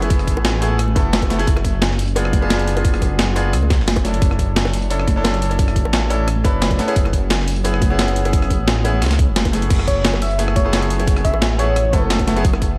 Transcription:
Already playing: detuned saw bass F#1
0.01 grand piano A3 B3 E4 G#4, closed hi-hat, high bongo
0.10 kick, closed hi-hat
0.19 cross-stick, closed hi-hat
0.27 kick, closed hi-hat
0.36 detuned saw bass A1, high bongo
0.45 snare, closed hi-hat
0.61 grand piano A3 B3 E4 G#4, closed hi-hat, high bongo
0.79 cross-stick, closed hi-hat
0.88 high conga
0.95 detuned saw bass F#1, grand piano A3 B3 E4 A4, kick, closed hi-hat, high bongo
1.13 snare, closed hi-hat, high conga
1.22 kick, closed hi-hat, high bongo
1.30 grand piano A3 B3 E4 A4, snare, closed hi-hat, high conga
1.39 grand piano A3 B3 E4 G#4, closed hi-hat
1.47 detuned saw bass F#1, kick, closed hi-hat
1.57 cross-stick, high bongo
1.65 kick, closed hi-hat
1.82 snare, closed hi-hat, high bongo
1.91 snare
1.99 closed hi-hat, open hi-hat
2.08 closed hi-hat
2.15 grand piano B3 D4 F4 G#4, closed hi-hat, high bongo
2.25 cross-stick
2.33 kick, closed hi-hat, high conga
2.41 grand piano B3 D4 F4 G#4, high bongo
2.50 snare, closed hi-hat
2.59 closed hi-hat
2.67 closed hi-hat
2.75 grand piano B3 D4 F4 G#4, closed hi-hat, high bongo
2.85 kick, closed hi-hat
2.94 cross-stick, closed hi-hat
3.02 kick, closed hi-hat, high bongo
3.11 detuned saw bass F#1
3.19 snare, closed hi-hat
3.35 grand piano B3 D4 F4 G#4, closed hi-hat, high bongo
3.53 detuned saw bass C#2, cross-stick, closed hi-hat
3.62 high bongo, high conga
3.70 kick, snare, closed hi-hat
3.79 detuned saw bass F#1, snare
3.88 snare, closed hi-hat, open hi-hat, high conga
3.96 kick, closed hi-hat, high bongo
4.04 grand piano C#4 D4 E4 A4, snare, closed hi-hat, high conga
4.14 closed hi-hat
4.22 detuned saw bass F#1, kick, closed hi-hat
4.31 cross-stick, high bongo
4.39 kick, closed hi-hat
4.56 snare, closed hi-hat
4.65 snare, high bongo
4.73 closed hi-hat, open hi-hat
4.82 closed hi-hat
4.90 grand piano C#4 D4 E4 A4, closed hi-hat, high bongo
5.00 cross-stick
5.07 kick, closed hi-hat, high conga
5.16 grand piano C#4 D4 E4 A4
5.24 snare, closed hi-hat, high bongo
5.34 closed hi-hat
5.42 closed hi-hat
5.50 grand piano C#4 D4 E4 A4, closed hi-hat, high bongo
5.59 kick, closed hi-hat
5.68 cross-stick, closed hi-hat
5.76 kick, closed hi-hat
5.85 detuned saw bass A1, high bongo
5.93 snare, closed hi-hat
6.10 grand piano C#4 D4 E4 A4, closed hi-hat, high bongo
6.28 cross-stick, closed hi-hat
6.36 high conga
6.44 detuned saw bass F#1, grand piano C#4 D4 E4 B4, kick, closed hi-hat, high bongo
6.62 snare, closed hi-hat, high conga
6.71 kick, closed hi-hat, high bongo
6.78 grand piano B3 C#4 E4 A4, snare, closed hi-hat, high conga
6.87 grand piano B3 C#4 E4 G#4, closed hi-hat
6.96 detuned saw bass F#1, kick, closed hi-hat
7.05 cross-stick, high bongo
7.13 kick, closed hi-hat
7.30 snare, closed hi-hat, high bongo
7.39 snare
7.48 closed hi-hat, open hi-hat
7.56 closed hi-hat
7.64 grand piano B3 C#4 E4 G#4, closed hi-hat, high bongo
7.74 cross-stick
7.82 kick, closed hi-hat, high conga
7.90 grand piano B3 C#4 E4 G#4, high bongo
7.99 snare, closed hi-hat
8.08 closed hi-hat
8.16 closed hi-hat
8.24 grand piano B3 C#4 E4 G#4, closed hi-hat, high bongo
8.33 kick, closed hi-hat
8.42 cross-stick, closed hi-hat
8.50 kick, closed hi-hat, high bongo
8.59 detuned saw bass A1
8.68 snare, closed hi-hat
8.84 grand piano B3 C#4 E4 G#4, closed hi-hat, high bongo
8.94 high conga
9.02 detuned saw bass C#2, cross-stick, snare, closed hi-hat
9.06 snare, closed hi-hat
9.11 snare, closed hi-hat, high bongo, high conga
9.19 kick, closed hi-hat
9.28 detuned saw bass F#1
9.36 snare, closed hi-hat, high conga
9.45 kick, snare, closed hi-hat, high bongo
9.52 grand piano A3 B3 E4 G#4, snare, closed hi-hat, high conga
9.62 closed hi-hat
9.70 detuned saw bass F#1, kick, closed hi-hat, crash
9.79 cross-stick, high bongo
9.87 soft synth lead C#5, kick, closed hi-hat
10.05 snare, closed hi-hat
10.13 snare, high bongo
10.22 soft synth lead E5, closed hi-hat, open hi-hat
10.31 closed hi-hat
10.38 grand piano A3 B3 E4 G#4, closed hi-hat, high bongo
10.48 cross-stick
10.56 soft synth lead C#5, kick, closed hi-hat, high conga
10.64 grand piano A3 B3 E4 G#4
10.73 snare, closed hi-hat, high bongo
10.82 closed hi-hat
10.90 closed hi-hat
10.98 grand piano A3 B3 E4 G#4, closed hi-hat, high bongo
11.07 kick, closed hi-hat
11.16 cross-stick, closed hi-hat
11.25 soft synth lead E5, kick, closed hi-hat
11.34 detuned saw bass A1, high bongo
11.42 snare, closed hi-hat
11.58 grand piano A3 B3 E4 G#4, soft synth lead C#5, closed hi-hat, high bongo
11.76 cross-stick, closed hi-hat
11.85 high conga
11.93 detuned saw bass F#1, grand piano A3 B3 E4 A4, kick, closed hi-hat, high bongo
12.10 snare, closed hi-hat, high conga
12.19 kick, closed hi-hat, high bongo
12.27 grand piano A3 B3 E4 A4, snare, closed hi-hat, high conga
12.36 grand piano A3 B3 E4 G#4, closed hi-hat
12.45 detuned saw bass F#1, kick, closed hi-hat
12.53 cross-stick, high bongo
12.62 kick, closed hi-hat

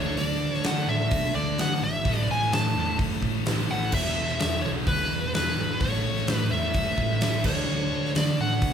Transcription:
Already playing: picked electric bass D2, distorted electric guitar D3 A3 D4, lead electric guitar C#5
0.17 picked electric bass D2, lead electric guitar D5, open hi-hat
0.41 picked electric bass D2
0.54 lead electric guitar C#5, snare
0.64 distorted electric guitar D3 A3 D4, picked electric bass D3, lead electric guitar F#5, snare, open hi-hat
0.87 picked electric bass A2, lead electric guitar E5
1.11 picked electric bass B2, kick, open hi-hat
1.34 picked electric bass D2, distorted electric guitar D3 A3 D4, lead electric guitar D5
1.58 picked electric bass D2, lead electric guitar F#5, snare, open hi-hat
1.82 picked electric bass G#1, lead electric guitar E5
2.04 picked electric bass A1, distorted electric guitar A2 E3 A3, kick, open hi-hat
2.28 picked electric bass A1, lead electric guitar G#5
2.42 snare
2.52 picked electric bass A2, lead electric guitar A5, snare, open hi-hat
2.74 picked electric bass E2, distorted electric guitar A2 E3 A3
2.99 picked electric bass F#2, kick, open hi-hat
3.22 picked electric bass A1, kick
3.45 picked electric bass A1, distorted electric guitar A2 E3 A3, snare, open hi-hat
3.58 snare
3.69 picked electric bass A1, lead electric guitar F#5
3.92 picked electric bass E1, distorted electric guitar E2 B2, lead electric guitar E5, kick, crash
3.96 distorted electric guitar E3
4.17 picked electric bass E1
4.28 snare
4.40 picked electric bass E2, lead electric guitar E5, snare, open hi-hat
4.62 picked electric bass B1, distorted electric guitar E2 B2 E3, lead electric guitar C#5
4.87 picked electric bass D2, lead electric guitar B4, kick, open hi-hat
5.11 picked electric bass E1
5.34 picked electric bass E1, distorted electric guitar E2 B2, lead electric guitar B4, snare, open hi-hat
5.38 distorted electric guitar E3
5.47 snare
5.57 picked electric bass G#1
5.80 picked electric bass A1, distorted electric guitar A2 E3, lead electric guitar C#5, kick, open hi-hat
5.85 distorted electric guitar A3
6.05 picked electric bass A1
6.17 snare
6.27 picked electric bass A2, snare, open hi-hat
6.35 lead electric guitar B4
6.50 picked electric bass E2, distorted electric guitar E3 A3, lead electric guitar E5
6.54 distorted electric guitar A2
6.74 picked electric bass F#2, kick, open hi-hat
6.98 picked electric bass A1, kick
7.20 picked electric bass A1, distorted electric guitar A2 E3, snare, open hi-hat
7.25 distorted electric guitar A3
7.44 picked electric bass D2, distorted electric guitar D3 A3, lead electric guitar C#5, kick, crash
7.48 distorted electric guitar D4
7.69 picked electric bass D2
7.93 picked electric bass D2
8.05 snare
8.15 distorted electric guitar D3 A3 D4, picked electric bass D3, lead electric guitar D5, snare, open hi-hat
8.40 picked electric bass A2, lead electric guitar F#5
8.61 picked electric bass B2, kick, open hi-hat

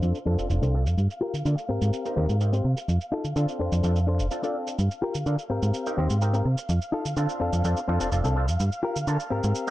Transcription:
Already playing: clean electric guitar D4 A4 C5, violin section F5 F6
0.02 fm bass F2, clav C4 D4 F4 A4, cabasa
0.15 cabasa
0.26 fm bass F2, clav C4 D4 F4 A4, clean electric guitar D4 A4 C5
0.39 fm bass F1, clav C4 D4 F4 A4, cabasa
0.50 fm bass F1, clav C4 D4 F4 A4, cabasa
0.62 fm bass C2, clean electric guitar D4 A4 C5, cabasa
0.74 clav C4 D4 F4 A4
0.86 fm bass F2, muted clean electric guitar stroke, cabasa
0.98 fm bass G2, cabasa
1.11 cabasa
1.21 clean electric guitar F4 G4 A#4
1.34 fm bass D3, cabasa
1.45 fm bass D3, clav A#3 D4 F4 A4, muted clean electric guitar stroke, cabasa
1.58 cabasa
1.69 fm bass G#2, clean electric guitar C4 G4 A#4
1.82 fm bass G#2, cabasa
1.93 cabasa
2.05 clav C4 D#4 G4 A#4, cabasa
2.16 fm bass D#2, clean electric guitar C4 G4 A#4, clav C4 D#4 G4 A#4
2.29 fm bass G#2, cabasa
2.41 clav C4 D#4 G4 A#4, cabasa
2.53 clean electric guitar C4 G4 C5, cabasa
2.65 fm bass C3
2.77 muted clean electric guitar stroke, cabasa
2.88 fm bass F2, cabasa
3.01 cabasa
3.12 clean electric guitar D#4 F4 A4
3.25 fm bass D3, cabasa
3.36 fm bass D3, clav C4 D4 F4 A4, muted clean electric guitar stroke, cabasa
3.49 cabasa
3.59 fm bass F2, clean electric guitar D4 A4 C5
3.72 fm bass F2, cabasa
3.83 fm bass F2, clav C4 D4 F4 A4, cabasa
3.96 cabasa
4.07 clean electric guitar D4 A4 C5
4.20 fm bass F1, cabasa
4.31 clav C4 D4 F4 A4, cabasa
4.43 clav C4 D4 F4 A4, clean electric guitar D4 A4 D5, cabasa
4.67 muted clean electric guitar stroke, cabasa
4.79 fm bass G2, violin section F5 F6, cabasa
4.91 cabasa
5.02 clean electric guitar F4 G4 A#4
5.15 fm bass D3, cabasa
5.26 fm bass D3, clav A#3 D4 F4 A4, muted clean electric guitar stroke, cabasa
5.39 cabasa
5.50 fm bass G#2, clean electric guitar C4 G4 A#4
5.63 fm bass G#2, cabasa
5.74 cabasa
5.86 clav C4 D#4 G4 A#4, cabasa
5.97 fm bass D#2, clean electric guitar C4 G4 C5, clav C4 D#4 G4 A#4
6.10 fm bass G#2, cabasa
6.21 clav C4 D#4 G4 A#4, cabasa
6.33 clean electric guitar C4 G4 A#4, cabasa
6.45 fm bass C3
6.57 muted clean electric guitar stroke, cabasa
6.69 fm bass F2, cabasa
6.82 cabasa
6.92 clean electric guitar D#4 F4 A4
7.05 fm bass D3, cabasa
7.16 fm bass D3, clav C4 D4 F4 A4, muted clean electric guitar stroke, cabasa
7.29 cabasa
7.40 fm bass F2, clean electric guitar C4 D4 A4
7.53 fm bass F2, cabasa
7.64 fm bass F2, clav C4 D4 F4 A4, cabasa
7.77 cabasa
7.88 fm bass F2, clean electric guitar C4 D4 F4, clav C4 D4 F4 A4
8.00 fm bass F1, clav C4 D4 F4 A4, cabasa
8.12 fm bass F1, clav C4 D4 F4 A4, cabasa
8.24 fm bass C2, clean electric guitar C4 D4 A4, cabasa
8.36 clav C4 D4 F4 A4
8.48 fm bass F2, muted clean electric guitar stroke, cabasa
8.60 fm bass G2, cabasa
8.72 cabasa
8.83 clean electric guitar F4 G4 A#4
8.96 fm bass D3, cabasa
9.07 fm bass D3, clav A#3 D4 F4 A4, muted clean electric guitar stroke, cabasa
9.20 cabasa
9.30 fm bass G#2, clean electric guitar C4 G4 A#4
9.44 fm bass G#2, cabasa
9.55 cabasa
9.67 clav C4

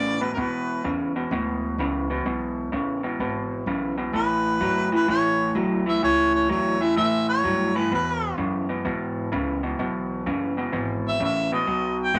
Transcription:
Already playing: clean electric guitar E2 C#3, upright bass A2, harmonica D5
0.21 clean electric guitar E2 B2, harmonica B4
0.34 clean electric guitar E2, upright bass B2, harmonica A#4
0.38 clean electric guitar B2, harmonica B4
0.84 upright bass E2, clean electric guitar E2 C#3
1.16 clean electric guitar E2 B2
1.31 upright bass D2, clean electric guitar E2 B2
1.78 upright bass C#2, clean electric guitar E2 C#3
2.10 clean electric guitar E2 B2
2.26 upright bass B1, clean electric guitar E2 B2
2.72 upright bass A1, clean electric guitar E2 C#3
3.03 clean electric guitar E2 B2
3.19 upright bass G#1, clean electric guitar E2 B2
3.66 upright bass B1, clean electric guitar E2 C#3
3.98 clean electric guitar E2 B2
4.13 upright bass A1, clean electric guitar A2 E3, harmonica B4
4.61 upright bass G1, clean electric guitar A2 F#3
4.92 clean electric guitar A2 E3, harmonica B4
5.08 upright bass A1, clean electric guitar A2 E3, harmonica C#5
5.55 upright bass B1, clean electric guitar A2 F#3
5.86 clean electric guitar A2 E3, harmonica E5
6.03 upright bass C#2, clean electric guitar A2 E3, harmonica C#5
6.35 harmonica C#5
6.49 upright bass E2, clean electric guitar A2 F#3, harmonica C#5
6.81 clean electric guitar A2 E3, harmonica E5
6.97 clean electric guitar A2 E3, upright bass A2, harmonica E5
7.29 harmonica C#5
7.44 upright bass G2, clean electric guitar A2 F#3
7.75 clean electric guitar A2 E3, harmonica B4
7.91 clean electric guitar E2 B2, upright bass E2, harmonica B4
8.38 clean electric guitar E2 C#3, upright bass F#2
8.69 clean electric guitar E2 B2
8.85 clean electric guitar E2 B2, upright bass G#2
9.32 upright bass C#2, clean electric guitar E2 C#3
9.63 clean electric guitar E2 B2
9.79 upright bass B1, clean electric guitar E2 B2
10.26 upright bass F#1, clean electric guitar E2 C#3
10.57 clean electric guitar E2 B2
10.72 upright bass G#1, clean electric guitar E2 B2
11.08 harmonica E5
11.20 upright bass A1, clean electric guitar E2 C#3
11.24 harmonica E5
11.52 clean electric guitar E2 B2, harmonica D#5
11.67 upright bass B1, clean electric guitar B2 F#3
12.02 harmonica G5
12.14 upright bass G#1, clean electric guitar B2 G#3

